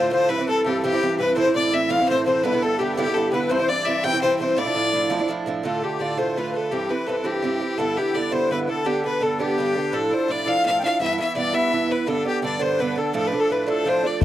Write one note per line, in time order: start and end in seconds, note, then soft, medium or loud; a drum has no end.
0.00 0.11 D3 medium
0.00 0.12 A3 medium
0.00 0.12 F4 medium
0.00 0.10 C5 medium
0.00 0.11 C5 medium
0.11 0.28 A2 medium
0.11 0.29 D3 medium
0.11 0.30 A3 medium
0.11 0.30 F4 medium
0.11 0.30 C5 medium
0.11 0.31 C5 medium
0.28 0.38 G2 medium
0.28 0.39 E3 medium
0.28 0.38 C4 medium
0.28 0.37 E4 medium
0.28 0.48 B4 loud
0.28 0.49 B4 medium
0.38 0.47 E3 soft
0.38 0.48 C4 medium
0.38 0.48 E4 soft
0.47 0.63 G2 soft
0.47 0.65 E3 medium
0.47 0.65 C4 medium
0.47 0.66 E4 medium
0.47 0.84 A4 medium
0.47 0.65 A4 medium
0.65 0.82 G2 medium
0.65 0.83 E3 medium
0.65 0.83 C4 medium
0.65 0.84 E4 medium
0.65 0.82 G4 medium
0.83 0.93 G2 medium
0.83 0.93 E3 medium
0.83 0.93 C4 medium
0.83 0.91 E4 medium
0.83 1.20 G4 medium
0.83 1.17 G4 medium
0.93 1.01 E3 soft
0.93 1.02 C4 medium
0.93 1.02 E4 medium
1.01 1.17 G2 medium
1.01 1.18 E3 medium
1.01 1.19 C4 medium
1.01 1.20 E4 medium
1.19 1.35 G2 medium
1.19 1.35 E3 medium
1.19 1.36 C4 medium
1.19 1.37 E4 medium
1.19 1.35 B4 medium
1.19 1.37 B4 medium
1.36 1.45 A2 medium
1.36 1.46 E3 medium
1.36 1.46 C4 medium
1.36 1.44 E4 medium
1.36 1.56 C5 medium
1.36 1.54 C5 loud
1.45 1.54 E3 soft
1.45 1.55 C4 medium
1.45 1.55 E4 medium
1.54 1.70 A2 medium
1.54 1.72 E3 soft
1.54 1.73 C4 medium
1.54 1.73 E4 medium
1.54 1.73 D5 medium
1.54 1.75 D5 medium
1.72 1.88 A2 medium
1.72 1.89 E3 medium
1.72 1.89 C4 medium
1.72 1.90 E4 medium
1.72 1.90 E5 medium
1.72 1.92 E5 medium
1.89 1.99 A2 medium
1.89 1.99 E3 medium
1.89 1.99 C4 medium
1.89 1.98 E4 medium
1.89 2.09 F5 medium
1.89 2.08 F5 loud
2.00 2.09 E3 soft
2.00 2.09 C4 soft
2.00 2.09 E4 medium
2.09 2.25 A2 medium
2.09 2.25 E3 medium
2.09 2.26 C4 medium
2.09 2.27 E4 medium
2.09 2.25 C5 medium
2.26 2.43 A2 medium
2.26 2.44 E3 medium
2.26 2.44 C4 medium
2.26 2.44 E4 medium
2.26 2.45 C5 medium
2.26 2.42 C5 medium
2.43 2.53 G2 medium
2.43 2.53 D3 medium
2.43 2.53 B3 medium
2.43 2.51 E4 medium
2.43 2.63 B4 medium
2.43 2.64 B4 medium
2.53 2.62 D3 soft
2.53 2.63 B3 medium
2.53 2.62 E4 medium
2.62 2.78 G2 soft
2.62 2.79 D3 soft
2.62 2.80 B3 soft
2.62 2.80 E4 medium
2.62 2.80 A4 medium
2.79 2.96 G2 medium
2.79 2.96 D3 medium
2.79 2.97 B3 medium
2.79 2.98 E4 medium
2.79 2.96 G4 medium
2.79 2.94 G4 medium
2.96 3.06 G2 medium
2.96 3.06 D3 medium
2.96 3.05 B3 medium
2.96 3.04 E4 medium
2.96 3.33 G4 medium
2.96 3.16 G4 loud
3.05 3.14 D3 soft
3.05 3.15 B3 soft
3.05 3.15 E4 medium
3.14 3.31 G2 medium
3.14 3.32 D3 medium
3.14 3.33 B3 medium
3.14 3.33 E4 medium
3.14 3.32 A4 medium
3.32 3.48 G2 medium
3.32 3.50 D3 medium
3.32 3.50 B3 medium
3.32 3.50 E4 medium
3.32 3.52 B4 medium
3.32 3.51 B4 medium
3.49 3.59 G2 medium
3.49 3.60 E3 medium
3.49 3.59 C4 medium
3.49 3.58 E4 medium
3.49 3.69 C5 medium
3.49 3.70 C5 loud
3.59 3.68 E3 soft
3.59 3.68 C4 soft
3.59 3.69 E4 medium
3.68 3.84 G2 soft
3.68 3.85 E3 soft
3.68 3.86 C4 soft
3.68 3.87 E4 soft
3.68 4.04 D5 loud
3.68 3.87 D5 loud
3.85 4.03 G2 medium
3.85 4.03 E3 medium
3.85 4.03 C4 medium
3.85 4.04 E4 medium
3.85 4.05 E5 loud
4.03 4.13 G2 medium
4.03 4.13 E3 medium
4.03 4.13 C4 medium
4.03 4.12 E4 medium
4.03 4.40 G5 medium
4.03 4.21 G5 loud
4.13 4.22 E3 soft
4.13 4.23 C4 medium
4.13 4.22 E4 medium
4.22 4.38 G2 medium
4.22 4.39 E3 medium
4.22 4.40 C4 medium
4.22 4.41 E4 medium
4.22 4.38 C5 medium
4.39 4.56 G2 soft
4.39 4.57 E3 medium
4.39 4.57 C4 medium
4.39 4.57 E4 medium
4.39 4.44 C5 medium
4.39 4.59 C5 medium
4.50 4.57 C5 medium
4.56 4.66 A2 medium
4.56 4.66 F3 medium
4.56 4.65 D4 medium
4.56 4.64 E4 medium
4.56 5.25 D5 medium
4.56 5.30 D5 loud
4.65 4.75 F3 soft
4.65 4.75 D4 soft
4.65 4.75 E4 medium
4.75 4.91 A2 medium
4.75 4.92 F3 soft
4.75 4.93 D4 medium
4.75 4.93 E4 medium
4.92 5.09 A2 medium
4.92 5.09 F3 medium
4.92 5.10 D4 medium
4.92 5.10 E4 medium
5.10 5.20 A2 medium
5.10 5.20 F3 medium
5.10 5.19 D4 medium
5.10 5.18 E4 medium
5.19 5.28 F3 soft
5.19 5.29 D4 medium
5.19 5.29 E4 medium
5.28 5.45 A2 medium
5.28 5.46 F3 medium
5.28 5.47 D4 medium
5.28 5.47 E4 medium
5.46 5.62 A2 medium
5.46 5.64 F3 medium
5.46 5.65 D4 medium
5.46 5.65 E4 medium
5.63 5.83 A2 medium
5.63 5.83 D3 medium
5.63 5.82 A3 medium
5.63 5.81 F4 medium
5.63 5.83 A4 medium
5.63 5.85 A4 medium
5.82 5.99 D3 soft
5.82 5.99 A3 soft
5.82 6.00 F4 soft
5.82 6.01 G4 medium
5.82 6.02 G4 medium
5.99 6.17 A2 soft
5.99 6.18 D3 medium
5.99 6.17 A3 medium
5.99 6.16 F4 medium
5.99 6.20 D5 medium
5.99 6.18 D5 medium
6.17 6.35 A2 medium
6.17 6.36 D3 medium
6.17 6.37 A3 medium
6.17 6.36 F4 medium
6.17 6.39 C5 medium
6.17 6.38 C5 medium
6.36 6.54 A2 soft
6.36 6.54 D3 medium
6.36 6.54 A3 medium
6.36 6.53 F4 medium
6.36 6.69 B4 medium
6.36 6.54 B4 medium
6.54 6.71 D3 soft
6.54 6.72 A3 soft
6.54 6.71 F4 soft
6.54 6.73 A4 medium
6.71 6.90 G2 medium
6.71 6.90 E3 medium
6.71 6.89 C4 medium
6.71 6.88 E4 medium
6.71 6.91 G4 medium
6.89 7.06 E3 soft
6.89 7.07 C4 soft
6.89 7.07 E4 soft
6.89 7.09 B4 medium
6.89 7.26 B4 medium
7.06 7.24 G2 soft
7.06 7.24 E3 soft
7.06 7.23 C4 medium
7.06 7.22 E4 medium
7.06 7.27 A4 medium
7.24 7.41 G2 medium
7.24 7.42 E3 medium
7.24 7.43 C4 medium
7.24 7.43 E4 medium
7.24 7.75 G4 medium
7.24 7.80 G4 medium
7.42 7.61 G2 medium
7.42 7.61 E3 medium
7.42 7.60 C4 medium
7.42 7.59 E4 medium
7.60 7.78 E3 soft
7.60 7.78 C4 soft
7.60 7.78 E4 soft
7.78 7.97 G2 medium
7.78 7.97 D3 medium
7.78 7.97 B3 medium
7.78 7.96 E4 medium
7.78 7.99 A4 medium
7.78 7.98 A4 medium
7.97 8.13 D3 soft
7.97 8.14 B3 soft
7.97 8.15 E4 soft
7.97 8.16 G4 medium
7.97 8.15 G4 medium
8.14 8.32 G2 medium
8.14 8.31 D3 medium
8.14 8.31 B3 medium
8.14 8.30 E4 medium
8.14 8.34 D5 medium
8.14 8.33 D5 medium
8.31 8.48 G2 medium
8.31 8.49 D3 medium
8.31 8.50 B3 medium
8.31 8.50 E4 medium
8.31 8.51 C5 medium
8.50 8.68 G2 soft
8.50 8.68 D3 medium
8.50 8.67 B3 medium
8.50 8.66 E4 medium
8.50 8.69 B4 medium
8.50 8.59 B4 medium
8.67 8.84 D3 soft
8.67 8.85 B3 soft
8.67 8.85 E4 soft
8.67 8.88 A4 medium
8.67 8.87 A4 medium
8.85 9.04 G2 medium
8.85 9.05 D3 medium
8.85 9.04 B3 medium
8.85 9.03 D4 medium
8.85 9.04 G4 medium
8.85 9.05 G4 medium
9.04 9.20 D3 soft
9.04 9.21 B3 soft
9.04 9.22 D4 soft
9.04 9.23 B4 medium
9.04 9.24 B4 medium
9.20 9.39 G2 soft
9.20 9.39 D3 medium
9.20 9.39 B3 medium
9.20 9.38 D4 medium
9.20 9.40 A4 medium
9.39 9.57 G2 medium
9.39 9.58 D3 soft
9.39 9.59 B3 medium
9.39 9.58 D4 medium
9.39 9.75 G4 medium
9.39 9.95 G4 medium
9.58 9.76 G2 medium
9.58 9.76 D3 medium
9.58 9.75 B3 medium
9.58 9.74 D4 medium
9.75 9.92 D3 soft
9.75 9.93 B3 soft
9.75 9.92 D4 medium
9.75 9.86 G4 medium
9.87 9.94 B4 soft
9.92 10.12 A2 medium
9.92 10.12 F3 medium
9.92 10.11 D4 medium
9.92 10.10 E4 medium
9.92 10.15 A4 medium
9.92 10.31 A4 medium
10.11 10.28 F3 soft
10.11 10.29 D4 soft
10.11 10.29 E4 soft
10.11 10.32 C5 medium
10.28 10.46 A2 medium
10.28 10.46 F3 medium
10.28 10.45 D4 medium
10.28 10.45 E4 medium
10.28 10.49 D5 medium
10.28 10.48 D5 medium
10.46 10.64 A2 soft
10.46 10.65 F3 medium
10.46 10.66 D4 medium
10.46 10.65 E4 medium
10.46 10.64 F5 medium
10.46 10.65 F5 loud
10.65 10.83 A2 medium
10.65 10.83 F3 medium
10.65 10.82 D4 medium
10.65 10.81 E4 medium
10.65 10.79 F5 medium
10.65 10.82 F5 loud
10.78 11.00 E4 soft
10.78 10.83 G5 medium
10.83 11.00 F3 soft
10.83 11.00 D4 soft
10.83 11.01 F5 medium
10.83 10.99 F5 medium
11.00 11.19 G2 medium
11.00 11.19 E3 medium
11.00 11.18 B3 medium
11.00 11.17 E4 medium
11.00 11.17 E5 medium
11.00 11.18 E5 loud
11.18 11.35 E3 soft
11.18 11.36 B3 soft
11.18 11.36 E4 soft
11.18 11.35 E5 medium
11.18 11.36 E5 medium
11.35 11.53 G2 medium
11.35 11.53 E3 medium
11.35 11.52 B3 medium
11.35 11.52 E4 medium
11.35 11.54 D5 medium
11.35 11.56 D5 medium
11.53 11.70 G2 medium
11.53 11.72 E3 medium
11.53 11.73 B3 medium
11.53 11.72 E4 medium
11.53 11.87 E5 medium
11.53 11.93 E5 loud
11.72 11.90 G2 medium
11.72 11.90 E3 medium
11.72 11.89 B3 medium
11.72 11.88 E4 medium
11.89 12.07 E3 soft
11.89 12.06 B3 soft
11.89 12.07 E4 soft
11.89 12.08 B4 medium
11.89 12.09 B4 medium
12.07 12.26 G2 medium
12.07 12.26 D3 medium
12.07 12.25 B3 medium
12.07 12.23 D4 medium
12.07 12.26 A4 medium
12.25 12.42 D3 soft
12.25 12.43 B3 soft
12.25 12.43 D4 soft
12.25 12.44 G4 medium
12.25 12.43 G4 medium
12.42 12.59 G2 medium
12.42 12.59 D3 medium
12.42 12.59 B3 medium
12.42 12.58 D4 medium
12.42 12.61 D5 medium
12.42 12.63 D5 medium
12.59 12.78 G2 medium
12.59 12.79 D3 medium
12.59 12.79 B3 medium
12.59 12.79 D4 medium
12.59 12.73 C5 medium
12.59 12.82 C5 medium
12.74 12.79 C5 medium
12.79 12.97 G2 medium
12.79 12.97 D3 medium
12.79 12.96 B3 medium
12.79 12.94 D4 medium
12.79 12.97 B4 medium
12.79 13.00 B4 medium
12.96 13.14 D3 soft
12.96 13.14 B3 medium
12.96 13.14 D4 medium
12.96 13.12 A4 medium
12.96 13.15 A4 medium
13.13 13.33 A2 medium
13.13 13.33 F3 medium
13.13 13.33 A3 medium
13.13 13.31 D4 medium
13.13 13.26 A4 medium
13.13 13.29 A4 medium
13.27 13.41 B4 medium
13.32 13.49 F3 soft
13.32 13.50 A3 soft
13.32 13.50 D4 soft
13.39 13.51 A4 medium
13.39 13.53 A4 medium
13.50 13.67 A2 soft
13.50 13.67 F3 medium
13.50 13.66 A3 medium
13.50 13.65 D4 medium
13.50 13.69 B4 medium
13.50 13.68 B4 medium
13.67 13.83 A2 medium
13.67 13.84 F3 medium
13.67 13.85 A3 medium
13.67 13.86 D4 medium
13.67 13.87 A4 medium
13.67 13.90 A4 medium
13.85 14.03 A2 medium
13.85 14.03 F3 medium
13.85 14.03 A3 medium
13.85 14.01 D4 medium
13.85 14.04 C5 medium
13.85 14.08 C5 medium
14.03 14.21 F3 soft
14.03 14.21 A3 soft
14.03 14.21 D4 soft
14.03 14.20 D5 medium
14.03 14.21 D5 medium
14.21 14.25 A2 medium
14.21 14.25 A4 medium
14.21 bodhran medium